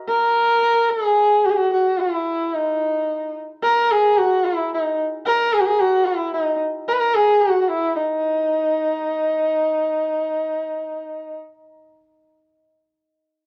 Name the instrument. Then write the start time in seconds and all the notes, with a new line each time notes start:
sarangi
0.08 A#4
0.90 G#4
1.45 F#4
1.50 G#4
1.56 F#4
1.74 F#4
2.00 E4
2.54 D#4
3.63 A#4
3.91 G#4
4.18 F#4
4.45 E4
4.74 D#4
5.26 A#4
5.53 G#4
5.60 F#4
5.66 G#4
5.80 F#4
6.06 E4
6.33 D#4
6.88 A#4
6.93 B4
6.99 A#4
7.15 G#4
7.42 F#4
7.62 F#4
7.69 E4
7.96 D#4